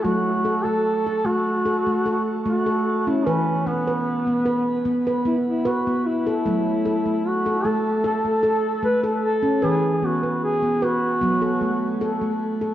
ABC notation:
X:1
M:4/4
L:1/16
Q:1/4=75
K:F#m
V:1 name="Duduk"
F3 A3 F6 F3 E | C2 B,6 z2 E E F2 E2- | E4 F2 A2 A4 B2 A2 | G2 F2 G2 F6 z4 |]
V:2 name="Handpan"
A,2 A A,2 A A,2 A A, A2 A, A2 C | B2 B, B2 B, B2 B, B B,2 B B,2 A | A,2 A A,2 A A,2 A A, A2 A, A2 C | B2 B, B2 B, B2 B, A A,2 A A,2 A |]
V:3 name="Handpan" clef=bass
F,16 | E,16 | F,16 | E,8 F,8 |]